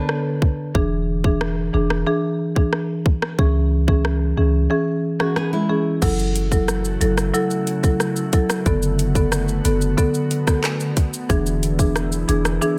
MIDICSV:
0, 0, Header, 1, 6, 480
1, 0, Start_track
1, 0, Key_signature, 3, "minor"
1, 0, Tempo, 659341
1, 546, Time_signature, 4, 2, 24, 8
1, 9310, End_track
2, 0, Start_track
2, 0, Title_t, "Nylon-string guitar"
2, 0, Program_c, 0, 24
2, 0, Note_on_c, 0, 62, 62
2, 0, Note_on_c, 0, 71, 73
2, 516, Note_off_c, 0, 71, 0
2, 519, Note_off_c, 0, 62, 0
2, 3784, Note_on_c, 0, 66, 73
2, 3899, Note_off_c, 0, 66, 0
2, 3905, Note_on_c, 0, 68, 84
2, 3909, Note_on_c, 0, 59, 70
2, 4019, Note_off_c, 0, 68, 0
2, 4022, Note_off_c, 0, 59, 0
2, 4025, Note_on_c, 0, 64, 77
2, 4029, Note_on_c, 0, 56, 67
2, 4367, Note_off_c, 0, 64, 0
2, 4369, Note_off_c, 0, 56, 0
2, 9310, End_track
3, 0, Start_track
3, 0, Title_t, "Marimba"
3, 0, Program_c, 1, 12
3, 543, Note_on_c, 1, 52, 86
3, 545, Note_on_c, 1, 62, 78
3, 548, Note_on_c, 1, 68, 95
3, 875, Note_off_c, 1, 52, 0
3, 876, Note_off_c, 1, 62, 0
3, 878, Note_off_c, 1, 68, 0
3, 903, Note_on_c, 1, 52, 78
3, 905, Note_on_c, 1, 62, 69
3, 907, Note_on_c, 1, 68, 81
3, 1235, Note_off_c, 1, 52, 0
3, 1237, Note_off_c, 1, 62, 0
3, 1238, Note_off_c, 1, 68, 0
3, 1264, Note_on_c, 1, 52, 73
3, 1265, Note_on_c, 1, 62, 69
3, 1268, Note_on_c, 1, 68, 82
3, 1485, Note_off_c, 1, 52, 0
3, 1486, Note_off_c, 1, 62, 0
3, 1488, Note_off_c, 1, 68, 0
3, 1502, Note_on_c, 1, 52, 92
3, 1504, Note_on_c, 1, 62, 86
3, 1506, Note_on_c, 1, 68, 104
3, 1603, Note_off_c, 1, 52, 0
3, 1604, Note_off_c, 1, 62, 0
3, 1605, Note_off_c, 1, 68, 0
3, 1863, Note_on_c, 1, 52, 76
3, 1864, Note_on_c, 1, 62, 66
3, 1866, Note_on_c, 1, 68, 76
3, 1963, Note_off_c, 1, 52, 0
3, 1964, Note_off_c, 1, 62, 0
3, 1965, Note_off_c, 1, 68, 0
3, 2463, Note_on_c, 1, 52, 88
3, 2465, Note_on_c, 1, 61, 82
3, 2468, Note_on_c, 1, 68, 96
3, 2796, Note_off_c, 1, 52, 0
3, 2796, Note_off_c, 1, 61, 0
3, 2798, Note_off_c, 1, 68, 0
3, 2823, Note_on_c, 1, 52, 75
3, 2824, Note_on_c, 1, 61, 69
3, 2827, Note_on_c, 1, 68, 86
3, 3155, Note_off_c, 1, 52, 0
3, 3156, Note_off_c, 1, 61, 0
3, 3158, Note_off_c, 1, 68, 0
3, 3181, Note_on_c, 1, 52, 70
3, 3183, Note_on_c, 1, 61, 64
3, 3185, Note_on_c, 1, 68, 79
3, 3404, Note_off_c, 1, 52, 0
3, 3405, Note_off_c, 1, 61, 0
3, 3406, Note_off_c, 1, 68, 0
3, 3422, Note_on_c, 1, 52, 90
3, 3425, Note_on_c, 1, 61, 86
3, 3426, Note_on_c, 1, 68, 105
3, 3523, Note_off_c, 1, 52, 0
3, 3524, Note_off_c, 1, 61, 0
3, 3525, Note_off_c, 1, 68, 0
3, 3782, Note_on_c, 1, 52, 73
3, 3784, Note_on_c, 1, 61, 66
3, 3786, Note_on_c, 1, 68, 79
3, 3883, Note_off_c, 1, 52, 0
3, 3884, Note_off_c, 1, 61, 0
3, 3885, Note_off_c, 1, 68, 0
3, 4142, Note_on_c, 1, 52, 74
3, 4144, Note_on_c, 1, 61, 71
3, 4146, Note_on_c, 1, 68, 81
3, 4243, Note_off_c, 1, 52, 0
3, 4244, Note_off_c, 1, 61, 0
3, 4245, Note_off_c, 1, 68, 0
3, 4382, Note_on_c, 1, 54, 88
3, 4384, Note_on_c, 1, 64, 83
3, 4386, Note_on_c, 1, 69, 99
3, 4715, Note_off_c, 1, 54, 0
3, 4716, Note_off_c, 1, 64, 0
3, 4717, Note_off_c, 1, 69, 0
3, 4742, Note_on_c, 1, 54, 75
3, 4745, Note_on_c, 1, 64, 71
3, 4747, Note_on_c, 1, 69, 82
3, 5075, Note_off_c, 1, 54, 0
3, 5076, Note_off_c, 1, 64, 0
3, 5077, Note_off_c, 1, 69, 0
3, 5102, Note_on_c, 1, 54, 74
3, 5104, Note_on_c, 1, 64, 67
3, 5106, Note_on_c, 1, 69, 81
3, 5324, Note_off_c, 1, 54, 0
3, 5325, Note_off_c, 1, 64, 0
3, 5327, Note_off_c, 1, 69, 0
3, 5341, Note_on_c, 1, 54, 94
3, 5344, Note_on_c, 1, 64, 87
3, 5346, Note_on_c, 1, 69, 101
3, 5443, Note_off_c, 1, 54, 0
3, 5444, Note_off_c, 1, 64, 0
3, 5445, Note_off_c, 1, 69, 0
3, 5702, Note_on_c, 1, 54, 71
3, 5705, Note_on_c, 1, 64, 67
3, 5707, Note_on_c, 1, 69, 81
3, 5803, Note_off_c, 1, 54, 0
3, 5804, Note_off_c, 1, 64, 0
3, 5806, Note_off_c, 1, 69, 0
3, 6064, Note_on_c, 1, 54, 75
3, 6066, Note_on_c, 1, 64, 69
3, 6068, Note_on_c, 1, 69, 84
3, 6164, Note_off_c, 1, 54, 0
3, 6165, Note_off_c, 1, 64, 0
3, 6166, Note_off_c, 1, 69, 0
3, 6304, Note_on_c, 1, 50, 85
3, 6306, Note_on_c, 1, 59, 79
3, 6308, Note_on_c, 1, 69, 97
3, 6636, Note_off_c, 1, 50, 0
3, 6637, Note_off_c, 1, 59, 0
3, 6638, Note_off_c, 1, 69, 0
3, 6662, Note_on_c, 1, 50, 78
3, 6664, Note_on_c, 1, 59, 72
3, 6667, Note_on_c, 1, 69, 83
3, 6995, Note_off_c, 1, 50, 0
3, 6996, Note_off_c, 1, 59, 0
3, 6997, Note_off_c, 1, 69, 0
3, 7022, Note_on_c, 1, 50, 74
3, 7025, Note_on_c, 1, 59, 70
3, 7027, Note_on_c, 1, 69, 84
3, 7245, Note_off_c, 1, 50, 0
3, 7246, Note_off_c, 1, 59, 0
3, 7247, Note_off_c, 1, 69, 0
3, 7262, Note_on_c, 1, 50, 99
3, 7264, Note_on_c, 1, 59, 88
3, 7266, Note_on_c, 1, 69, 106
3, 7363, Note_off_c, 1, 50, 0
3, 7364, Note_off_c, 1, 59, 0
3, 7365, Note_off_c, 1, 69, 0
3, 7621, Note_on_c, 1, 50, 75
3, 7623, Note_on_c, 1, 59, 70
3, 7626, Note_on_c, 1, 69, 78
3, 7722, Note_off_c, 1, 50, 0
3, 7723, Note_off_c, 1, 59, 0
3, 7725, Note_off_c, 1, 69, 0
3, 8221, Note_on_c, 1, 52, 91
3, 8224, Note_on_c, 1, 62, 82
3, 8225, Note_on_c, 1, 68, 98
3, 8555, Note_off_c, 1, 52, 0
3, 8556, Note_off_c, 1, 62, 0
3, 8557, Note_off_c, 1, 68, 0
3, 8581, Note_on_c, 1, 52, 80
3, 8583, Note_on_c, 1, 62, 72
3, 8585, Note_on_c, 1, 68, 84
3, 8914, Note_off_c, 1, 52, 0
3, 8916, Note_off_c, 1, 62, 0
3, 8917, Note_off_c, 1, 68, 0
3, 8942, Note_on_c, 1, 52, 73
3, 8943, Note_on_c, 1, 62, 70
3, 8946, Note_on_c, 1, 68, 85
3, 9164, Note_off_c, 1, 52, 0
3, 9165, Note_off_c, 1, 62, 0
3, 9166, Note_off_c, 1, 68, 0
3, 9182, Note_on_c, 1, 52, 95
3, 9184, Note_on_c, 1, 62, 87
3, 9186, Note_on_c, 1, 68, 108
3, 9283, Note_off_c, 1, 52, 0
3, 9284, Note_off_c, 1, 62, 0
3, 9285, Note_off_c, 1, 68, 0
3, 9310, End_track
4, 0, Start_track
4, 0, Title_t, "Ambient pad"
4, 0, Program_c, 2, 92
4, 4382, Note_on_c, 2, 49, 82
4, 4382, Note_on_c, 2, 66, 87
4, 4383, Note_on_c, 2, 54, 71
4, 4383, Note_on_c, 2, 57, 73
4, 4383, Note_on_c, 2, 64, 74
4, 6284, Note_off_c, 2, 49, 0
4, 6285, Note_off_c, 2, 64, 0
4, 6285, Note_off_c, 2, 66, 0
4, 6303, Note_on_c, 2, 50, 76
4, 6303, Note_on_c, 2, 59, 76
4, 6304, Note_on_c, 2, 66, 89
4, 8195, Note_off_c, 2, 54, 0
4, 8195, Note_off_c, 2, 57, 0
4, 8205, Note_off_c, 2, 66, 0
4, 8225, Note_on_c, 2, 56, 73
4, 8226, Note_on_c, 2, 52, 73
4, 8226, Note_on_c, 2, 64, 87
4, 9310, Note_off_c, 2, 50, 0
4, 9310, Note_off_c, 2, 52, 0
4, 9310, Note_off_c, 2, 56, 0
4, 9310, Note_off_c, 2, 59, 0
4, 9310, Note_off_c, 2, 64, 0
4, 9310, End_track
5, 0, Start_track
5, 0, Title_t, "808-style bass"
5, 0, Program_c, 3, 38
5, 546, Note_on_c, 3, 28, 112
5, 1237, Note_off_c, 3, 28, 0
5, 1267, Note_on_c, 3, 28, 97
5, 1487, Note_off_c, 3, 28, 0
5, 2466, Note_on_c, 3, 37, 112
5, 3156, Note_off_c, 3, 37, 0
5, 3184, Note_on_c, 3, 37, 93
5, 3405, Note_off_c, 3, 37, 0
5, 4385, Note_on_c, 3, 30, 120
5, 5076, Note_off_c, 3, 30, 0
5, 5105, Note_on_c, 3, 30, 98
5, 5326, Note_off_c, 3, 30, 0
5, 6305, Note_on_c, 3, 30, 113
5, 6996, Note_off_c, 3, 30, 0
5, 7025, Note_on_c, 3, 30, 85
5, 7246, Note_off_c, 3, 30, 0
5, 8225, Note_on_c, 3, 28, 116
5, 8916, Note_off_c, 3, 28, 0
5, 8945, Note_on_c, 3, 28, 101
5, 9166, Note_off_c, 3, 28, 0
5, 9310, End_track
6, 0, Start_track
6, 0, Title_t, "Drums"
6, 65, Note_on_c, 9, 37, 90
6, 138, Note_off_c, 9, 37, 0
6, 306, Note_on_c, 9, 36, 94
6, 378, Note_off_c, 9, 36, 0
6, 546, Note_on_c, 9, 36, 105
6, 619, Note_off_c, 9, 36, 0
6, 905, Note_on_c, 9, 36, 85
6, 978, Note_off_c, 9, 36, 0
6, 1026, Note_on_c, 9, 37, 96
6, 1099, Note_off_c, 9, 37, 0
6, 1386, Note_on_c, 9, 37, 96
6, 1459, Note_off_c, 9, 37, 0
6, 1866, Note_on_c, 9, 36, 94
6, 1939, Note_off_c, 9, 36, 0
6, 1985, Note_on_c, 9, 37, 89
6, 2058, Note_off_c, 9, 37, 0
6, 2225, Note_on_c, 9, 36, 91
6, 2298, Note_off_c, 9, 36, 0
6, 2347, Note_on_c, 9, 37, 99
6, 2420, Note_off_c, 9, 37, 0
6, 2466, Note_on_c, 9, 36, 108
6, 2538, Note_off_c, 9, 36, 0
6, 2825, Note_on_c, 9, 36, 83
6, 2897, Note_off_c, 9, 36, 0
6, 2947, Note_on_c, 9, 37, 93
6, 3020, Note_off_c, 9, 37, 0
6, 3785, Note_on_c, 9, 37, 91
6, 3858, Note_off_c, 9, 37, 0
6, 3904, Note_on_c, 9, 37, 94
6, 3977, Note_off_c, 9, 37, 0
6, 4384, Note_on_c, 9, 49, 92
6, 4384, Note_on_c, 9, 82, 61
6, 4385, Note_on_c, 9, 36, 109
6, 4457, Note_off_c, 9, 36, 0
6, 4457, Note_off_c, 9, 49, 0
6, 4457, Note_off_c, 9, 82, 0
6, 4505, Note_on_c, 9, 82, 55
6, 4578, Note_off_c, 9, 82, 0
6, 4627, Note_on_c, 9, 42, 71
6, 4627, Note_on_c, 9, 82, 52
6, 4700, Note_off_c, 9, 42, 0
6, 4700, Note_off_c, 9, 82, 0
6, 4744, Note_on_c, 9, 36, 85
6, 4746, Note_on_c, 9, 82, 72
6, 4817, Note_off_c, 9, 36, 0
6, 4819, Note_off_c, 9, 82, 0
6, 4865, Note_on_c, 9, 37, 94
6, 4867, Note_on_c, 9, 82, 82
6, 4938, Note_off_c, 9, 37, 0
6, 4939, Note_off_c, 9, 82, 0
6, 4985, Note_on_c, 9, 82, 47
6, 5058, Note_off_c, 9, 82, 0
6, 5105, Note_on_c, 9, 42, 89
6, 5105, Note_on_c, 9, 82, 61
6, 5178, Note_off_c, 9, 42, 0
6, 5178, Note_off_c, 9, 82, 0
6, 5224, Note_on_c, 9, 37, 96
6, 5224, Note_on_c, 9, 82, 67
6, 5297, Note_off_c, 9, 37, 0
6, 5297, Note_off_c, 9, 82, 0
6, 5347, Note_on_c, 9, 82, 72
6, 5419, Note_off_c, 9, 82, 0
6, 5464, Note_on_c, 9, 82, 51
6, 5536, Note_off_c, 9, 82, 0
6, 5585, Note_on_c, 9, 42, 55
6, 5585, Note_on_c, 9, 82, 43
6, 5658, Note_off_c, 9, 42, 0
6, 5658, Note_off_c, 9, 82, 0
6, 5705, Note_on_c, 9, 82, 72
6, 5706, Note_on_c, 9, 36, 97
6, 5778, Note_off_c, 9, 36, 0
6, 5778, Note_off_c, 9, 82, 0
6, 5824, Note_on_c, 9, 37, 95
6, 5825, Note_on_c, 9, 82, 64
6, 5897, Note_off_c, 9, 37, 0
6, 5898, Note_off_c, 9, 82, 0
6, 5942, Note_on_c, 9, 82, 52
6, 6015, Note_off_c, 9, 82, 0
6, 6063, Note_on_c, 9, 42, 75
6, 6063, Note_on_c, 9, 82, 53
6, 6065, Note_on_c, 9, 36, 96
6, 6136, Note_off_c, 9, 42, 0
6, 6136, Note_off_c, 9, 82, 0
6, 6137, Note_off_c, 9, 36, 0
6, 6185, Note_on_c, 9, 37, 102
6, 6186, Note_on_c, 9, 82, 71
6, 6258, Note_off_c, 9, 37, 0
6, 6259, Note_off_c, 9, 82, 0
6, 6305, Note_on_c, 9, 36, 110
6, 6305, Note_on_c, 9, 82, 61
6, 6378, Note_off_c, 9, 36, 0
6, 6378, Note_off_c, 9, 82, 0
6, 6424, Note_on_c, 9, 82, 56
6, 6497, Note_off_c, 9, 82, 0
6, 6546, Note_on_c, 9, 42, 73
6, 6546, Note_on_c, 9, 82, 53
6, 6618, Note_off_c, 9, 42, 0
6, 6618, Note_off_c, 9, 82, 0
6, 6664, Note_on_c, 9, 36, 85
6, 6665, Note_on_c, 9, 82, 77
6, 6737, Note_off_c, 9, 36, 0
6, 6738, Note_off_c, 9, 82, 0
6, 6784, Note_on_c, 9, 37, 98
6, 6786, Note_on_c, 9, 82, 82
6, 6857, Note_off_c, 9, 37, 0
6, 6859, Note_off_c, 9, 82, 0
6, 6904, Note_on_c, 9, 82, 46
6, 6977, Note_off_c, 9, 82, 0
6, 7025, Note_on_c, 9, 42, 89
6, 7025, Note_on_c, 9, 82, 65
6, 7098, Note_off_c, 9, 42, 0
6, 7098, Note_off_c, 9, 82, 0
6, 7144, Note_on_c, 9, 82, 66
6, 7217, Note_off_c, 9, 82, 0
6, 7264, Note_on_c, 9, 36, 81
6, 7267, Note_on_c, 9, 82, 72
6, 7337, Note_off_c, 9, 36, 0
6, 7340, Note_off_c, 9, 82, 0
6, 7384, Note_on_c, 9, 82, 51
6, 7456, Note_off_c, 9, 82, 0
6, 7505, Note_on_c, 9, 42, 57
6, 7505, Note_on_c, 9, 82, 41
6, 7578, Note_off_c, 9, 42, 0
6, 7578, Note_off_c, 9, 82, 0
6, 7626, Note_on_c, 9, 36, 95
6, 7626, Note_on_c, 9, 37, 94
6, 7626, Note_on_c, 9, 82, 74
6, 7698, Note_off_c, 9, 36, 0
6, 7699, Note_off_c, 9, 37, 0
6, 7699, Note_off_c, 9, 82, 0
6, 7744, Note_on_c, 9, 37, 93
6, 7744, Note_on_c, 9, 39, 89
6, 7745, Note_on_c, 9, 82, 66
6, 7817, Note_off_c, 9, 37, 0
6, 7817, Note_off_c, 9, 39, 0
6, 7818, Note_off_c, 9, 82, 0
6, 7863, Note_on_c, 9, 82, 51
6, 7936, Note_off_c, 9, 82, 0
6, 7985, Note_on_c, 9, 36, 95
6, 7985, Note_on_c, 9, 42, 80
6, 7985, Note_on_c, 9, 82, 54
6, 8057, Note_off_c, 9, 42, 0
6, 8057, Note_off_c, 9, 82, 0
6, 8058, Note_off_c, 9, 36, 0
6, 8107, Note_on_c, 9, 82, 70
6, 8179, Note_off_c, 9, 82, 0
6, 8225, Note_on_c, 9, 36, 115
6, 8225, Note_on_c, 9, 82, 60
6, 8298, Note_off_c, 9, 36, 0
6, 8298, Note_off_c, 9, 82, 0
6, 8345, Note_on_c, 9, 82, 57
6, 8418, Note_off_c, 9, 82, 0
6, 8467, Note_on_c, 9, 42, 72
6, 8467, Note_on_c, 9, 82, 53
6, 8540, Note_off_c, 9, 42, 0
6, 8540, Note_off_c, 9, 82, 0
6, 8584, Note_on_c, 9, 36, 90
6, 8585, Note_on_c, 9, 82, 74
6, 8656, Note_off_c, 9, 36, 0
6, 8658, Note_off_c, 9, 82, 0
6, 8704, Note_on_c, 9, 37, 101
6, 8706, Note_on_c, 9, 82, 81
6, 8777, Note_off_c, 9, 37, 0
6, 8779, Note_off_c, 9, 82, 0
6, 8824, Note_on_c, 9, 82, 48
6, 8897, Note_off_c, 9, 82, 0
6, 8945, Note_on_c, 9, 42, 88
6, 8945, Note_on_c, 9, 82, 62
6, 9018, Note_off_c, 9, 42, 0
6, 9018, Note_off_c, 9, 82, 0
6, 9065, Note_on_c, 9, 37, 96
6, 9065, Note_on_c, 9, 82, 72
6, 9138, Note_off_c, 9, 37, 0
6, 9138, Note_off_c, 9, 82, 0
6, 9187, Note_on_c, 9, 82, 71
6, 9260, Note_off_c, 9, 82, 0
6, 9310, End_track
0, 0, End_of_file